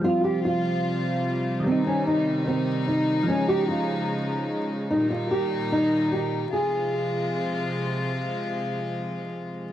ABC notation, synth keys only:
X:1
M:4/4
L:1/8
Q:1/4=148
K:Fm
V:1 name="Synth keys"
[F,G,CF]8 | [E,G,CE]8 | [F,A,DE]8 | z8 |
z8 | z8 |]